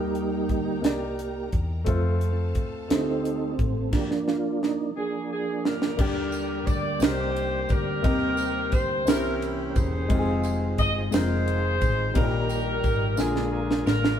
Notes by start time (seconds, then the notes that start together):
Already playing: D#2 G3 A#3 D#4 G4 A#4 D#5 G5 A#5
0.15 closed hi-hat
0.49 D2, kick, closed hi-hat
0.81 C2 A#3 D#4 G4 A#4, snare, closed hi-hat
0.85 D5
1.19 closed hi-hat
1.52 E2, kick, closed hi-hat
1.84 F2 F3 A3 C4 F4 A4 C5 F5 A5, kick, closed hi-hat
1.89 C5
2.21 closed hi-hat
2.55 D#2, kick, closed hi-hat
2.88 D2 A3 C4 D#4 F4 G4 C5, snare, closed hi-hat
2.97 A4
3.25 closed hi-hat
3.59 A1, kick, closed hi-hat
3.91 F3 A#3 D4 G4, kick, snare, crash
4.11 snare
4.28 F4, snare
4.62 D#4, snare
4.96 F3 A#3 D4 G#4
5.32 G#4
5.65 D4 G4 A#4, snare
5.82 snare
5.97 D#2 D3 G3 A#3 D4 G4 A#4 D5 G5, kick, crash
6.32 ride, tambourine
6.67 D2 D5, kick, ride, tambourine
7.00 C2 A#3 D4 D#4 G4 A#4 C5, snare, ride, tambourine
7.36 ride
7.69 D2 G4 A#4, kick, ride, tambourine
8.02 D#2 C3 A#3 C4 D#4 G4 A#4 C5, kick, ride
8.37 ride, tambourine
8.72 D2 C5, kick, ride, tambourine
9.05 C2 C3 E3 C#4 E4 G4 A#4 C5, snare, ride, tambourine
9.10 C#4 E4
9.42 ride
9.74 E1 D#4 G#4 C5, kick, ride, tambourine
10.08 F1 D#3 G#3 C4 D#4 F4 G#4, kick, ride
10.13 G4
10.19 G#4
10.43 ride, tambourine
10.78 G1 D#5, kick, ride, tambourine
11.11 F1 G#3 C4 D#4 F4 A#4 C5, snare, ride, tambourine
11.16 G#4
11.48 ride
11.81 A1, kick, ride, tambourine
12.14 A#1 A#2 G3 A#3 D#4 F4 G4 A#4, kick, ride
12.18 D#4 G4 A#4
12.24 G4
12.49 ride, tambourine
12.84 G#1, kick, ride, tambourine
13.16 A#1 D3 G#3 A#3 D4 F4 G#4 A#4, snare, tambourine
13.21 D4 F4
13.36 snare
13.53 G#4
13.71 snare
13.86 A1 D4 F4 A#4, snare, tambourine
14.05 snare